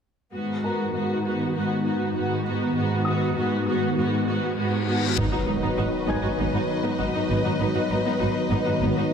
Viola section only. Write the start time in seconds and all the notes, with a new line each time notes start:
0.32 B3 F#4
0.63 B3 F#4
0.93 B3 F#4
1.25 B3 F#4
1.55 B3 F#4
1.83 B3 F#4
2.15 B3 F#4
2.45 B3 F#4
2.76 B3 F#4
3.07 B3 F#4
3.36 B3 F#4
3.67 B3 F#4
3.96 B3 F#4
4.26 B3 F#4
4.57 B3 F#4
4.86 B3 F#4
5.17 B3 D#4
5.31 D#4 F#4
5.46 D#4
5.62 B3 D#4
5.77 D#4 F#4
6.06 B3 D#4
6.22 D#4 F#4
6.38 B3 D#4
6.53 D#4 F#4
6.83 B3 D#4
6.99 D#4 F#4
7.15 D#4
7.30 B3 D#4
7.44 D#4 F#4
7.60 B3 D#4
7.75 D#4 F#4
7.90 D#4
8.05 B3 D#4
8.19 D#4 F#4
8.50 B3 D#4
8.65 D#4 F#4
8.80 B3 D#4
8.97 D#4 F#4